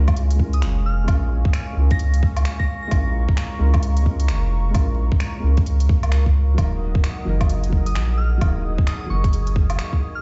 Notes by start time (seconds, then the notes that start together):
Already playing: C#2 G#3 C#4 F4 A#4 F5 G#5 C#6
0.08 kick, closed hi-hat, low woodblock
0.16 closed hi-hat
0.31 closed hi-hat
0.35 G#3 C#4
0.40 F4 A#4, kick
0.53 D#6, closed hi-hat
0.62 F1, finger snap, closed hi-hat
0.86 F6
1.04 G#3 C#4
1.08 A#1 F4, kick, closed hi-hat, low woodblock
1.12 A#4
1.45 A#1, kick
1.53 finger snap, closed hi-hat
1.73 C#2 G#3 C#4
1.78 F4 A#4
1.91 A#6, kick, closed hi-hat
1.99 closed hi-hat
2.14 closed hi-hat
2.23 kick
2.37 closed hi-hat, low woodblock
2.45 finger snap, closed hi-hat
2.59 A#6, kick
2.83 A#6
2.87 G#3 C#4, closed hi-hat, low woodblock
2.91 A#1 F4 A#5, kick
2.96 A#4
3.28 A#1, kick
3.37 finger snap, closed hi-hat
3.59 C#2 G#3 C#4 F4 A#4
3.74 kick, closed hi-hat, low woodblock
3.83 closed hi-hat
3.97 closed hi-hat
4.02 G#3 C#4, kick
4.08 F4 A#4
4.20 closed hi-hat
4.28 F1, finger snap, closed hi-hat
4.71 G#3 C#4, closed hi-hat, low woodblock
4.75 A#1 F4, kick
4.79 A#4
5.12 A#1, kick
5.20 finger snap, closed hi-hat
5.40 C#2 G#3 C#4
5.45 F4 A#4
5.57 kick, closed hi-hat
5.66 closed hi-hat
5.80 closed hi-hat
5.89 D#2, kick
6.02 C#2, closed hi-hat, low woodblock
6.12 finger snap, closed hi-hat
6.26 kick
6.54 D#1 F#3 A#3 G#4, kick, closed hi-hat, low woodblock
6.59 D#4 A#4 D#5 F#5 D#6
6.95 D#1, kick
7.04 finger snap, closed hi-hat
7.25 F#1 F#3 A#3 D#4 A#4
7.41 kick, closed hi-hat, low woodblock
7.50 closed hi-hat
7.64 closed hi-hat
7.69 F#3 A#3, kick
7.74 D#4 A#4
7.86 D#6, closed hi-hat
7.95 A#1, finger snap, closed hi-hat
8.17 F6
8.38 D#1 F#3 A#3, kick, closed hi-hat, low woodblock
8.43 D#4 A#4
8.78 D#1, kick
8.87 D#6, finger snap, closed hi-hat
9.01 D#6
9.06 F#1 F#3 A#3 C#6
9.12 D#4 A#4
9.24 kick, closed hi-hat
9.33 closed hi-hat
9.47 closed hi-hat
9.56 kick
9.70 closed hi-hat, low woodblock
9.79 finger snap, closed hi-hat
9.93 kick
10.15 F6